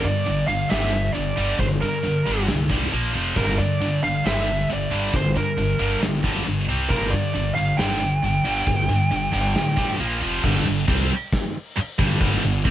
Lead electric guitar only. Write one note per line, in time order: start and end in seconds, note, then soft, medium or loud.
0.04 0.47 D5 medium
0.48 0.70 F5 loud
0.70 1.13 E5 loud
1.13 1.60 D5 loud
1.59 1.65 C5 medium
1.81 2.44 A#4 medium
3.37 3.59 A#4 medium
3.58 4.03 D5 loud
4.03 4.26 F5 loud
4.26 4.67 E5 loud
4.73 5.12 D5 medium
5.16 5.37 C5 medium
5.37 5.99 A#4 medium
6.89 7.13 A#4 medium
7.10 7.52 D5 medium
7.55 7.78 F5 medium
7.77 9.95 G5 medium